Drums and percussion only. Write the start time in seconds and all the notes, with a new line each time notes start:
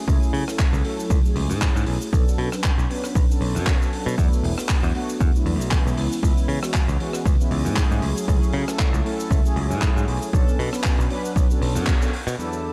0.08 kick, cabasa
0.23 cabasa
0.34 open hi-hat
0.48 cross-stick, cabasa
0.59 kick, clap, cabasa
0.74 cabasa
0.85 open hi-hat
1.00 cabasa
1.10 kick, cabasa
1.25 cabasa
1.36 open hi-hat
1.50 cabasa
1.61 kick, clap, cabasa
1.77 cabasa
1.86 open hi-hat
2.01 cabasa
2.13 kick, cabasa
2.28 cabasa
2.38 open hi-hat
2.52 cross-stick, cabasa
2.64 kick, clap, cabasa
2.79 cabasa
2.91 open hi-hat
3.04 cross-stick, cabasa
3.15 kick, cabasa
3.31 cabasa
3.41 open hi-hat
3.56 cabasa
3.67 kick, clap, cabasa
3.82 cabasa
3.93 open hi-hat
4.08 open hi-hat, cabasa
4.18 kick, cabasa
4.33 cabasa
4.44 open hi-hat
4.58 cross-stick, cabasa
4.69 kick, clap, cabasa
4.84 cabasa
4.95 open hi-hat
5.09 cabasa
5.20 kick, cabasa
5.36 cabasa
5.46 open hi-hat
5.61 cabasa
5.71 kick, clap, cabasa
5.87 cabasa
5.97 open hi-hat
6.12 cabasa
6.23 kick, cabasa
6.38 cabasa
6.49 open hi-hat
6.63 cross-stick, cabasa
6.74 kick, clap, cabasa
6.89 cabasa
7.00 open hi-hat
7.13 cross-stick, cabasa
7.25 kick, cabasa
7.41 cabasa
7.51 open hi-hat
7.66 cabasa
7.76 kick, clap, cabasa
7.92 cabasa
8.02 open hi-hat
8.15 open hi-hat, cabasa
8.28 kick, cabasa
8.43 cabasa
8.53 open hi-hat
8.68 cross-stick, cabasa
8.79 kick, clap, cabasa
8.94 cabasa
9.06 open hi-hat
9.20 cabasa
9.31 kick, cabasa
9.46 cabasa
9.56 open hi-hat
9.71 cabasa
9.82 kick, clap, cabasa
9.97 cabasa
10.08 open hi-hat
10.22 cabasa
10.33 kick, cabasa
10.48 cabasa
10.60 open hi-hat
10.73 cross-stick, cabasa
10.84 kick, clap, cabasa
11.00 cabasa
11.10 open hi-hat
11.25 cabasa
11.36 kick, cabasa
11.51 cabasa
11.62 open hi-hat
11.76 cabasa
11.87 kick, clap, cabasa
12.02 cabasa
12.13 open hi-hat
12.27 open hi-hat, cabasa
12.40 cabasa
12.53 cabasa